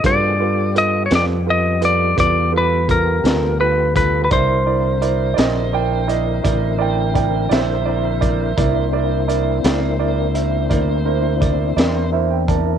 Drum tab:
HH |x-xx-xx-xx-x|x-xx-xx-xx-x|x-xx-xx-xx-x|
SD |---o-----o--|---o-----o--|---o-----o--|
BD |o-----o-o--o|o-----o-o--o|o-----o-o--o|